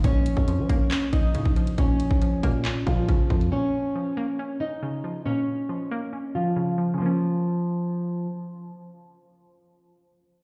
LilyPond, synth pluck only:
\new Staff \with { instrumentName = "Synth pluck" } { \clef bass \time 4/4 \key bes \minor \tempo 4 = 138 bes,4 f8 bes8 des'4 des8 f8 | bes,4 f8 bes8 des'4 des8 f8 | bes,4 f8 bes8 des'4 des8 f8 | bes,4 f8 bes8 des'4 des8 f8 |
<des f bes des'>1~ | <des f bes des'>1 | }